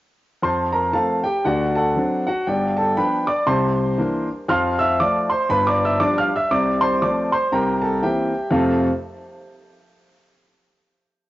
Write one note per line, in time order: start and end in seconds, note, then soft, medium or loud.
0.42 0.85 F2 medium
0.42 0.85 F3 medium
0.42 0.71 C5 medium
0.42 0.71 A5 medium
0.42 0.72 C6 medium
0.72 0.92 A#4 medium
0.72 0.93 A#5 medium
0.93 1.21 F3 soft
0.93 1.21 A3 soft
0.93 1.21 C4 soft
0.93 1.22 A4 soft
0.93 1.22 F5 soft
0.93 1.23 A5 medium
1.24 1.43 G4 medium
1.24 1.44 G5 medium
1.45 1.88 D2 medium
1.45 1.87 D3 medium
1.45 1.73 F#4 soft
1.45 1.73 D5 soft
1.45 1.74 F#5 medium
1.75 2.22 A4 soft
1.75 2.22 F#5 soft
1.75 2.25 A5 medium
1.96 2.23 F#3 soft
1.96 2.24 C4 soft
1.96 2.24 D4 soft
2.27 2.45 F#4 medium
2.27 2.46 F#5 medium
2.47 2.89 G1 medium
2.47 2.89 G2 medium
2.47 2.75 G4 soft
2.47 2.75 D5 soft
2.47 2.76 G5 medium
2.77 2.95 A4 medium
2.77 2.96 A5 medium
2.97 3.25 F3 soft
2.97 3.25 B3 soft
2.97 3.25 D4 soft
2.97 3.25 B4 medium
2.97 3.25 G5 medium
2.97 3.26 B5 medium
3.27 3.46 D5 medium
3.27 3.47 D6 medium
3.46 3.90 C2 medium
3.46 3.89 C3 medium
3.46 4.24 C5 medium
3.46 4.24 A5 soft
3.46 4.27 C6 medium
3.98 4.25 E3 soft
3.98 4.26 A#3 soft
3.98 4.26 D4 soft
4.49 4.91 F2 medium
4.49 4.91 F3 medium
4.49 4.77 F5 medium
4.49 4.77 C6 medium
4.49 4.78 F6 medium
4.79 4.98 E5 medium
4.79 4.99 E6 loud
5.00 5.28 F3 soft
5.00 5.28 A3 soft
5.00 5.28 F4 soft
5.00 5.28 D5 medium
5.00 5.29 D6 medium
5.30 5.49 C5 medium
5.30 5.49 C6 medium
5.49 5.92 G1 medium
5.49 5.92 G2 medium
5.49 5.66 B4 medium
5.49 5.66 B5 medium
5.67 5.83 D5 medium
5.67 5.83 D6 medium
5.85 6.00 E5 medium
5.85 6.01 E6 medium
6.00 6.28 F3 soft
6.00 6.28 G3 soft
6.00 6.28 D4 medium
6.00 6.16 D5 medium
6.00 6.17 D6 medium
6.18 6.34 F5 medium
6.18 6.34 F6 medium
6.36 6.51 E5 medium
6.36 6.51 E6 medium
6.51 6.93 C2 medium
6.51 6.93 C3 medium
6.51 6.79 D5 medium
6.51 6.81 D6 medium
6.81 7.00 C5 medium
6.81 7.01 C6 medium
7.02 7.29 F3 soft
7.02 7.30 A3 soft
7.02 7.30 C4 soft
7.02 7.30 D5 medium
7.02 7.31 D6 medium
7.32 7.51 C5 medium
7.32 7.52 C6 medium
7.52 7.95 C2 medium
7.52 7.94 C3 medium
7.52 7.80 A#4 medium
7.52 7.80 G5 medium
7.52 7.82 A#5 medium
7.82 8.01 A4 soft
7.82 8.02 A5 medium
8.02 8.30 E3 soft
8.02 8.31 A#3 soft
8.02 8.31 C4 soft
8.02 8.50 G4 soft
8.02 8.49 E5 soft
8.02 8.53 G5 medium
8.51 8.83 F2 medium
8.51 8.83 C3 medium
8.51 8.83 A3 medium
8.51 8.83 C4 medium
8.51 8.83 F4 medium
8.51 8.83 A4 medium
8.51 8.83 F5 medium